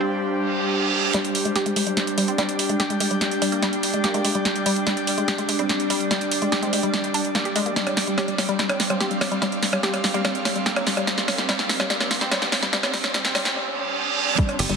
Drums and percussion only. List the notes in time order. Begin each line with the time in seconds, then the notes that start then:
1.14 snare, closed hi-hat
1.25 closed hi-hat
1.35 open hi-hat
1.45 closed hi-hat
1.56 snare, closed hi-hat
1.66 closed hi-hat
1.76 open hi-hat
1.87 closed hi-hat
1.97 snare, closed hi-hat
2.07 closed hi-hat
2.18 open hi-hat
2.28 closed hi-hat
2.38 snare, closed hi-hat
2.49 closed hi-hat
2.59 open hi-hat
2.69 closed hi-hat
2.80 snare, closed hi-hat
2.90 closed hi-hat
3.00 open hi-hat
3.11 closed hi-hat
3.21 snare, closed hi-hat
3.31 closed hi-hat
3.42 open hi-hat
3.52 closed hi-hat
3.63 snare, closed hi-hat
3.73 closed hi-hat
3.83 open hi-hat
3.94 closed hi-hat
4.04 snare, closed hi-hat
4.14 closed hi-hat
4.25 open hi-hat
4.35 closed hi-hat
4.45 snare, closed hi-hat
4.56 closed hi-hat
4.66 open hi-hat
4.76 closed hi-hat
4.87 snare, closed hi-hat
4.97 closed hi-hat
5.07 open hi-hat
5.18 closed hi-hat
5.28 snare, closed hi-hat
5.38 closed hi-hat
5.49 open hi-hat
5.59 closed hi-hat
5.69 snare, closed hi-hat
5.80 closed hi-hat
5.90 open hi-hat
6.00 closed hi-hat
6.11 snare, closed hi-hat
6.21 closed hi-hat
6.31 open hi-hat
6.42 closed hi-hat
6.52 snare, closed hi-hat
6.63 closed hi-hat
6.73 open hi-hat
6.83 closed hi-hat
6.94 snare, closed hi-hat
7.04 closed hi-hat
7.14 open hi-hat
7.25 closed hi-hat
7.35 snare, closed hi-hat
7.45 closed hi-hat
7.56 open hi-hat
7.66 closed hi-hat
7.76 snare, closed hi-hat
7.87 closed hi-hat, percussion blips
7.97 snare, open hi-hat
8.07 closed hi-hat
8.18 snare, closed hi-hat, percussion blips
8.28 closed hi-hat
8.38 snare, open hi-hat, percussion blips
8.49 closed hi-hat
8.59 snare, closed hi-hat
8.69 closed hi-hat, percussion blips
8.80 snare, open hi-hat
8.90 closed hi-hat, percussion blips
9.01 snare, closed hi-hat
9.11 closed hi-hat
9.21 snare, open hi-hat, percussion blips
9.32 closed hi-hat
9.42 snare, closed hi-hat, percussion blips
9.52 closed hi-hat
9.63 snare, open hi-hat
9.73 closed hi-hat, percussion blips
9.83 snare, closed hi-hat
9.94 closed hi-hat, percussion blips
10.04 snare, open hi-hat
10.14 closed hi-hat
10.25 snare, closed hi-hat, percussion blips
10.35 closed hi-hat
10.45 snare, open hi-hat, percussion blips
10.56 closed hi-hat
10.66 snare, closed hi-hat
10.76 closed hi-hat, percussion blips
10.87 snare, open hi-hat
10.97 closed hi-hat, percussion blips
11.07 snare, closed hi-hat
11.18 snare, closed hi-hat
11.28 snare, open hi-hat, percussion blips
11.38 snare, closed hi-hat
11.49 snare, closed hi-hat, percussion blips
11.59 snare, closed hi-hat
11.69 snare, open hi-hat
11.80 snare, closed hi-hat, percussion blips
11.90 snare, closed hi-hat
12.00 snare, closed hi-hat, percussion blips
12.11 snare, open hi-hat
12.21 snare, closed hi-hat
12.32 snare, closed hi-hat, percussion blips
12.42 snare, closed hi-hat
12.52 snare, open hi-hat, percussion blips
12.63 snare, closed hi-hat
12.73 snare, closed hi-hat
12.83 snare, closed hi-hat, percussion blips
12.94 snare, open hi-hat
13.04 snare, closed hi-hat, percussion blips
13.14 snare, closed hi-hat
13.25 snare, closed hi-hat
13.35 snare, open hi-hat, percussion blips
13.45 snare, closed hi-hat
14.38 kick, closed hi-hat
14.49 closed hi-hat, percussion blips
14.59 open hi-hat, ride
14.69 closed hi-hat